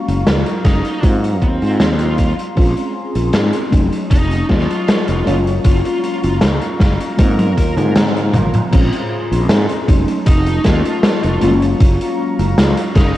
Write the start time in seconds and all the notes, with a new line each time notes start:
Already playing: F#3 G#3 A#3 C#4 F4 F5 A#5 C#6
0.08 F#1, closed hi-hat
0.27 C#2, snare, closed hi-hat
0.46 closed hi-hat
0.65 F#1 D#4, kick, snare, closed hi-hat
0.85 closed hi-hat
1.02 G#2 F#3 A#3 C4 F4 C6, kick, closed hi-hat
1.24 closed hi-hat
1.42 D#2 C4, kick, closed hi-hat
1.62 G#2, closed hi-hat
1.80 D#2, snare, closed hi-hat
1.99 F4, closed hi-hat
2.18 F4, kick, closed hi-hat
2.39 closed hi-hat
2.56 A#1 G#3 C4 C#4 F4 G#4, kick, closed hi-hat
2.77 closed hi-hat
3.15 A#1, closed hi-hat
3.33 G#2, snare, closed hi-hat
3.53 closed hi-hat
3.71 F1 F#3 A3 C#4 D#4 D#5 A5 C#6, kick, closed hi-hat
3.93 closed hi-hat
4.11 F1 D#4, kick, closed hi-hat
4.31 closed hi-hat
4.49 D#2 F4, kick, snare, closed hi-hat
4.70 closed hi-hat
4.88 snare, closed hi-hat
5.08 F1 F4, closed hi-hat
5.25 F#1 G#3 A#3 C#4 F4 F5 A#5 C#6, closed hi-hat
5.47 closed hi-hat
5.64 F#1 F4, kick, closed hi-hat
5.85 F4, closed hi-hat
6.04 F4, closed hi-hat
6.23 F#1 F4, closed hi-hat
6.41 C#2, snare, closed hi-hat
6.61 closed hi-hat
6.80 F#1, kick, snare, closed hi-hat
7.00 closed hi-hat
7.17 G#2 F#3 A#3 C4 F4 A#4 C6, kick, closed hi-hat, high tom
7.39 A#4, closed hi-hat, high tom
7.57 D#2 A#4, kick, closed hi-hat
7.77 G#2 A#4, closed hi-hat, mid tom
7.96 snare, closed hi-hat, mid tom
8.16 closed hi-hat
8.33 G#1, closed hi-hat, mid tom
8.54 closed hi-hat, mid tom
8.71 A#1 G#3 C4 C#4 F4 G#4 A#5 C6, kick, closed hi-hat, crash
8.92 closed hi-hat
9.31 A#1, closed hi-hat
9.49 G#2, snare, closed hi-hat
9.69 closed hi-hat
9.87 F1 F#3 A3 C#4 D#4 D#5 A5 C#6, kick, closed hi-hat
10.08 closed hi-hat
10.26 F1 D#4, kick, closed hi-hat
10.46 closed hi-hat
10.64 D#2 F4, kick, snare, closed hi-hat
10.85 closed hi-hat
11.03 snare, closed hi-hat
11.23 F1 F4, closed hi-hat
11.41 F#1 G#3 A#3 C#4 F4 F5 A#5, closed hi-hat
11.62 closed hi-hat
11.80 F#1, kick, closed hi-hat
12.01 closed hi-hat
12.39 F#1, closed hi-hat
12.58 C#2, snare, closed hi-hat
12.77 closed hi-hat
12.95 F#1 D#4, kick, snare, closed hi-hat